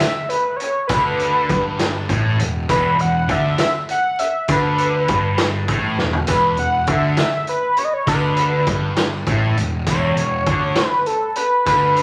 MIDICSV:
0, 0, Header, 1, 5, 480
1, 0, Start_track
1, 0, Tempo, 598802
1, 717, Time_signature, 6, 3, 24, 8
1, 9640, End_track
2, 0, Start_track
2, 0, Title_t, "Analog synth lead"
2, 0, Program_c, 0, 81
2, 0, Note_on_c, 0, 76, 102
2, 233, Note_on_c, 0, 71, 90
2, 245, Note_off_c, 0, 76, 0
2, 450, Note_on_c, 0, 73, 101
2, 462, Note_off_c, 0, 71, 0
2, 696, Note_off_c, 0, 73, 0
2, 701, Note_on_c, 0, 71, 102
2, 1638, Note_off_c, 0, 71, 0
2, 2157, Note_on_c, 0, 71, 110
2, 2408, Note_on_c, 0, 78, 99
2, 2420, Note_off_c, 0, 71, 0
2, 2651, Note_on_c, 0, 76, 95
2, 2663, Note_off_c, 0, 78, 0
2, 2879, Note_off_c, 0, 76, 0
2, 2884, Note_on_c, 0, 76, 105
2, 2990, Note_off_c, 0, 76, 0
2, 3131, Note_on_c, 0, 78, 97
2, 3359, Note_on_c, 0, 76, 100
2, 3371, Note_off_c, 0, 78, 0
2, 3598, Note_off_c, 0, 76, 0
2, 3618, Note_on_c, 0, 71, 104
2, 4535, Note_off_c, 0, 71, 0
2, 5044, Note_on_c, 0, 71, 106
2, 5263, Note_off_c, 0, 71, 0
2, 5282, Note_on_c, 0, 78, 100
2, 5518, Note_on_c, 0, 76, 97
2, 5530, Note_off_c, 0, 78, 0
2, 5755, Note_off_c, 0, 76, 0
2, 5760, Note_on_c, 0, 76, 95
2, 5981, Note_off_c, 0, 76, 0
2, 6006, Note_on_c, 0, 71, 95
2, 6238, Note_on_c, 0, 73, 101
2, 6250, Note_off_c, 0, 71, 0
2, 6287, Note_on_c, 0, 75, 76
2, 6299, Note_off_c, 0, 73, 0
2, 6360, Note_on_c, 0, 73, 98
2, 6372, Note_off_c, 0, 75, 0
2, 6476, Note_off_c, 0, 73, 0
2, 6481, Note_on_c, 0, 71, 91
2, 7406, Note_off_c, 0, 71, 0
2, 7931, Note_on_c, 0, 73, 103
2, 8634, Note_on_c, 0, 71, 94
2, 8646, Note_off_c, 0, 73, 0
2, 8870, Note_on_c, 0, 69, 81
2, 8882, Note_off_c, 0, 71, 0
2, 9106, Note_off_c, 0, 69, 0
2, 9111, Note_on_c, 0, 71, 96
2, 9338, Note_off_c, 0, 71, 0
2, 9356, Note_on_c, 0, 71, 103
2, 9581, Note_off_c, 0, 71, 0
2, 9593, Note_on_c, 0, 71, 100
2, 9640, Note_off_c, 0, 71, 0
2, 9640, End_track
3, 0, Start_track
3, 0, Title_t, "Distorted electric guitar"
3, 0, Program_c, 1, 30
3, 727, Note_on_c, 1, 50, 120
3, 1196, Note_off_c, 1, 50, 0
3, 1201, Note_on_c, 1, 43, 86
3, 1673, Note_off_c, 1, 43, 0
3, 1682, Note_on_c, 1, 45, 92
3, 1913, Note_off_c, 1, 45, 0
3, 1920, Note_on_c, 1, 40, 81
3, 2111, Note_off_c, 1, 40, 0
3, 2162, Note_on_c, 1, 40, 103
3, 2388, Note_off_c, 1, 40, 0
3, 2397, Note_on_c, 1, 40, 73
3, 2590, Note_off_c, 1, 40, 0
3, 2627, Note_on_c, 1, 50, 94
3, 2865, Note_off_c, 1, 50, 0
3, 3598, Note_on_c, 1, 50, 101
3, 4070, Note_off_c, 1, 50, 0
3, 4081, Note_on_c, 1, 43, 106
3, 4552, Note_off_c, 1, 43, 0
3, 4565, Note_on_c, 1, 45, 91
3, 4793, Note_off_c, 1, 45, 0
3, 4806, Note_on_c, 1, 40, 73
3, 4993, Note_off_c, 1, 40, 0
3, 5027, Note_on_c, 1, 40, 105
3, 5265, Note_off_c, 1, 40, 0
3, 5279, Note_on_c, 1, 40, 75
3, 5469, Note_off_c, 1, 40, 0
3, 5512, Note_on_c, 1, 50, 96
3, 5747, Note_off_c, 1, 50, 0
3, 6472, Note_on_c, 1, 50, 112
3, 6946, Note_off_c, 1, 50, 0
3, 6960, Note_on_c, 1, 43, 93
3, 7431, Note_off_c, 1, 43, 0
3, 7432, Note_on_c, 1, 45, 96
3, 7667, Note_off_c, 1, 45, 0
3, 7684, Note_on_c, 1, 40, 72
3, 7872, Note_off_c, 1, 40, 0
3, 7912, Note_on_c, 1, 40, 112
3, 8147, Note_off_c, 1, 40, 0
3, 8162, Note_on_c, 1, 40, 71
3, 8351, Note_off_c, 1, 40, 0
3, 8404, Note_on_c, 1, 50, 99
3, 8633, Note_off_c, 1, 50, 0
3, 9349, Note_on_c, 1, 50, 110
3, 9640, Note_off_c, 1, 50, 0
3, 9640, End_track
4, 0, Start_track
4, 0, Title_t, "Picked electric bass"
4, 0, Program_c, 2, 34
4, 716, Note_on_c, 2, 38, 88
4, 1165, Note_off_c, 2, 38, 0
4, 1201, Note_on_c, 2, 31, 83
4, 1648, Note_off_c, 2, 31, 0
4, 1679, Note_on_c, 2, 33, 96
4, 1899, Note_off_c, 2, 33, 0
4, 1903, Note_on_c, 2, 28, 72
4, 2133, Note_off_c, 2, 28, 0
4, 2160, Note_on_c, 2, 28, 84
4, 2382, Note_off_c, 2, 28, 0
4, 2394, Note_on_c, 2, 28, 78
4, 2619, Note_off_c, 2, 28, 0
4, 2633, Note_on_c, 2, 38, 85
4, 2858, Note_off_c, 2, 38, 0
4, 3595, Note_on_c, 2, 38, 89
4, 4044, Note_off_c, 2, 38, 0
4, 4077, Note_on_c, 2, 31, 95
4, 4525, Note_off_c, 2, 31, 0
4, 4559, Note_on_c, 2, 33, 92
4, 4781, Note_off_c, 2, 33, 0
4, 4803, Note_on_c, 2, 28, 78
4, 5023, Note_off_c, 2, 28, 0
4, 5034, Note_on_c, 2, 28, 82
4, 5258, Note_off_c, 2, 28, 0
4, 5280, Note_on_c, 2, 28, 75
4, 5501, Note_off_c, 2, 28, 0
4, 5507, Note_on_c, 2, 38, 80
4, 5734, Note_off_c, 2, 38, 0
4, 6469, Note_on_c, 2, 38, 101
4, 6920, Note_off_c, 2, 38, 0
4, 6948, Note_on_c, 2, 31, 82
4, 7400, Note_off_c, 2, 31, 0
4, 7428, Note_on_c, 2, 33, 86
4, 7655, Note_off_c, 2, 33, 0
4, 7668, Note_on_c, 2, 28, 83
4, 7895, Note_off_c, 2, 28, 0
4, 7910, Note_on_c, 2, 28, 89
4, 8136, Note_off_c, 2, 28, 0
4, 8140, Note_on_c, 2, 28, 73
4, 8371, Note_off_c, 2, 28, 0
4, 8386, Note_on_c, 2, 38, 91
4, 8614, Note_off_c, 2, 38, 0
4, 9350, Note_on_c, 2, 38, 95
4, 9640, Note_off_c, 2, 38, 0
4, 9640, End_track
5, 0, Start_track
5, 0, Title_t, "Drums"
5, 0, Note_on_c, 9, 54, 100
5, 1, Note_on_c, 9, 42, 93
5, 3, Note_on_c, 9, 38, 104
5, 79, Note_off_c, 9, 54, 0
5, 81, Note_off_c, 9, 42, 0
5, 83, Note_off_c, 9, 38, 0
5, 117, Note_on_c, 9, 54, 35
5, 197, Note_off_c, 9, 54, 0
5, 239, Note_on_c, 9, 42, 71
5, 319, Note_off_c, 9, 42, 0
5, 481, Note_on_c, 9, 42, 71
5, 481, Note_on_c, 9, 54, 33
5, 561, Note_off_c, 9, 42, 0
5, 561, Note_off_c, 9, 54, 0
5, 713, Note_on_c, 9, 54, 109
5, 716, Note_on_c, 9, 36, 113
5, 718, Note_on_c, 9, 42, 87
5, 794, Note_off_c, 9, 54, 0
5, 797, Note_off_c, 9, 36, 0
5, 798, Note_off_c, 9, 42, 0
5, 957, Note_on_c, 9, 42, 72
5, 1037, Note_off_c, 9, 42, 0
5, 1197, Note_on_c, 9, 36, 114
5, 1201, Note_on_c, 9, 42, 73
5, 1278, Note_off_c, 9, 36, 0
5, 1281, Note_off_c, 9, 42, 0
5, 1437, Note_on_c, 9, 42, 96
5, 1438, Note_on_c, 9, 38, 97
5, 1439, Note_on_c, 9, 54, 78
5, 1517, Note_off_c, 9, 42, 0
5, 1519, Note_off_c, 9, 38, 0
5, 1519, Note_off_c, 9, 54, 0
5, 1560, Note_on_c, 9, 54, 32
5, 1640, Note_off_c, 9, 54, 0
5, 1678, Note_on_c, 9, 36, 94
5, 1680, Note_on_c, 9, 42, 71
5, 1758, Note_off_c, 9, 36, 0
5, 1760, Note_off_c, 9, 42, 0
5, 1920, Note_on_c, 9, 42, 81
5, 2001, Note_off_c, 9, 42, 0
5, 2158, Note_on_c, 9, 36, 99
5, 2158, Note_on_c, 9, 42, 93
5, 2163, Note_on_c, 9, 54, 99
5, 2238, Note_off_c, 9, 36, 0
5, 2239, Note_off_c, 9, 42, 0
5, 2244, Note_off_c, 9, 54, 0
5, 2397, Note_on_c, 9, 42, 61
5, 2477, Note_off_c, 9, 42, 0
5, 2635, Note_on_c, 9, 42, 70
5, 2637, Note_on_c, 9, 36, 107
5, 2715, Note_off_c, 9, 42, 0
5, 2717, Note_off_c, 9, 36, 0
5, 2871, Note_on_c, 9, 42, 91
5, 2872, Note_on_c, 9, 38, 100
5, 2872, Note_on_c, 9, 54, 86
5, 2951, Note_off_c, 9, 42, 0
5, 2952, Note_off_c, 9, 38, 0
5, 2952, Note_off_c, 9, 54, 0
5, 3116, Note_on_c, 9, 42, 70
5, 3196, Note_off_c, 9, 42, 0
5, 3357, Note_on_c, 9, 42, 72
5, 3359, Note_on_c, 9, 54, 25
5, 3437, Note_off_c, 9, 42, 0
5, 3439, Note_off_c, 9, 54, 0
5, 3591, Note_on_c, 9, 42, 97
5, 3597, Note_on_c, 9, 36, 102
5, 3607, Note_on_c, 9, 54, 100
5, 3671, Note_off_c, 9, 42, 0
5, 3677, Note_off_c, 9, 36, 0
5, 3687, Note_off_c, 9, 54, 0
5, 3833, Note_on_c, 9, 42, 64
5, 3913, Note_off_c, 9, 42, 0
5, 4072, Note_on_c, 9, 42, 75
5, 4076, Note_on_c, 9, 36, 109
5, 4084, Note_on_c, 9, 54, 31
5, 4152, Note_off_c, 9, 42, 0
5, 4156, Note_off_c, 9, 36, 0
5, 4164, Note_off_c, 9, 54, 0
5, 4310, Note_on_c, 9, 42, 91
5, 4312, Note_on_c, 9, 38, 114
5, 4315, Note_on_c, 9, 54, 80
5, 4390, Note_off_c, 9, 42, 0
5, 4392, Note_off_c, 9, 38, 0
5, 4395, Note_off_c, 9, 54, 0
5, 4553, Note_on_c, 9, 42, 67
5, 4556, Note_on_c, 9, 36, 98
5, 4634, Note_off_c, 9, 42, 0
5, 4636, Note_off_c, 9, 36, 0
5, 4796, Note_on_c, 9, 38, 70
5, 4876, Note_off_c, 9, 38, 0
5, 4914, Note_on_c, 9, 43, 82
5, 4994, Note_off_c, 9, 43, 0
5, 5025, Note_on_c, 9, 42, 96
5, 5034, Note_on_c, 9, 36, 105
5, 5041, Note_on_c, 9, 54, 105
5, 5105, Note_off_c, 9, 42, 0
5, 5114, Note_off_c, 9, 36, 0
5, 5121, Note_off_c, 9, 54, 0
5, 5266, Note_on_c, 9, 42, 66
5, 5347, Note_off_c, 9, 42, 0
5, 5506, Note_on_c, 9, 42, 70
5, 5512, Note_on_c, 9, 36, 108
5, 5586, Note_off_c, 9, 42, 0
5, 5592, Note_off_c, 9, 36, 0
5, 5747, Note_on_c, 9, 42, 93
5, 5748, Note_on_c, 9, 38, 101
5, 5758, Note_on_c, 9, 54, 77
5, 5827, Note_off_c, 9, 42, 0
5, 5828, Note_off_c, 9, 38, 0
5, 5838, Note_off_c, 9, 54, 0
5, 5882, Note_on_c, 9, 54, 28
5, 5962, Note_off_c, 9, 54, 0
5, 5989, Note_on_c, 9, 42, 67
5, 6069, Note_off_c, 9, 42, 0
5, 6226, Note_on_c, 9, 42, 67
5, 6239, Note_on_c, 9, 54, 25
5, 6306, Note_off_c, 9, 42, 0
5, 6320, Note_off_c, 9, 54, 0
5, 6470, Note_on_c, 9, 36, 107
5, 6472, Note_on_c, 9, 42, 93
5, 6483, Note_on_c, 9, 54, 93
5, 6550, Note_off_c, 9, 36, 0
5, 6552, Note_off_c, 9, 42, 0
5, 6564, Note_off_c, 9, 54, 0
5, 6706, Note_on_c, 9, 42, 70
5, 6786, Note_off_c, 9, 42, 0
5, 6948, Note_on_c, 9, 36, 112
5, 6949, Note_on_c, 9, 42, 79
5, 7029, Note_off_c, 9, 36, 0
5, 7029, Note_off_c, 9, 42, 0
5, 7186, Note_on_c, 9, 42, 89
5, 7187, Note_on_c, 9, 38, 115
5, 7194, Note_on_c, 9, 54, 88
5, 7266, Note_off_c, 9, 42, 0
5, 7268, Note_off_c, 9, 38, 0
5, 7275, Note_off_c, 9, 54, 0
5, 7319, Note_on_c, 9, 54, 27
5, 7400, Note_off_c, 9, 54, 0
5, 7429, Note_on_c, 9, 36, 108
5, 7433, Note_on_c, 9, 42, 61
5, 7509, Note_off_c, 9, 36, 0
5, 7513, Note_off_c, 9, 42, 0
5, 7675, Note_on_c, 9, 42, 69
5, 7680, Note_on_c, 9, 54, 26
5, 7755, Note_off_c, 9, 42, 0
5, 7760, Note_off_c, 9, 54, 0
5, 7908, Note_on_c, 9, 42, 88
5, 7909, Note_on_c, 9, 36, 99
5, 7913, Note_on_c, 9, 54, 102
5, 7988, Note_off_c, 9, 42, 0
5, 7989, Note_off_c, 9, 36, 0
5, 7993, Note_off_c, 9, 54, 0
5, 8150, Note_on_c, 9, 42, 64
5, 8230, Note_off_c, 9, 42, 0
5, 8387, Note_on_c, 9, 42, 67
5, 8388, Note_on_c, 9, 36, 111
5, 8468, Note_off_c, 9, 42, 0
5, 8469, Note_off_c, 9, 36, 0
5, 8620, Note_on_c, 9, 42, 82
5, 8622, Note_on_c, 9, 38, 122
5, 8634, Note_on_c, 9, 54, 79
5, 8700, Note_off_c, 9, 42, 0
5, 8702, Note_off_c, 9, 38, 0
5, 8715, Note_off_c, 9, 54, 0
5, 8765, Note_on_c, 9, 54, 31
5, 8845, Note_off_c, 9, 54, 0
5, 8867, Note_on_c, 9, 42, 65
5, 8947, Note_off_c, 9, 42, 0
5, 9103, Note_on_c, 9, 42, 76
5, 9124, Note_on_c, 9, 54, 24
5, 9184, Note_off_c, 9, 42, 0
5, 9204, Note_off_c, 9, 54, 0
5, 9349, Note_on_c, 9, 42, 98
5, 9351, Note_on_c, 9, 36, 99
5, 9362, Note_on_c, 9, 54, 103
5, 9429, Note_off_c, 9, 42, 0
5, 9431, Note_off_c, 9, 36, 0
5, 9442, Note_off_c, 9, 54, 0
5, 9591, Note_on_c, 9, 42, 68
5, 9640, Note_off_c, 9, 42, 0
5, 9640, End_track
0, 0, End_of_file